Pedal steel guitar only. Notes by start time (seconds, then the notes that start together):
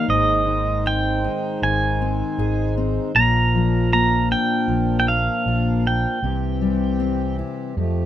0.10 D#5
0.87 G5
1.63 G#5
3.16 A#5
3.93 A#5
4.32 G5
5.00 G5
5.08 F5
5.87 G5